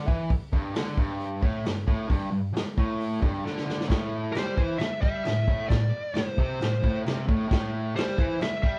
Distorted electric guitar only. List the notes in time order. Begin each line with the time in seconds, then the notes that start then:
0.08 E3
0.52 G2
0.75 D3
0.98 G2
1.42 A2
1.65 G2
1.87 A2
2.08 G2
2.31 G2
2.53 muted distorted electric guitar stroke
2.77 A2
3.21 G2
3.44 D3
3.66 D3
3.89 A2
4.35 G3
4.56 E3
4.80 muted distorted electric guitar stroke
5.02 G3
5.24 A2
5.47 A2
5.70 A2
6.15 A2
6.38 C3
6.61 A2
6.82 A2
7.06 C3
7.28 A2
7.49 A2
7.95 G3
8.18 E3
8.41 muted distorted electric guitar stroke
8.63 G3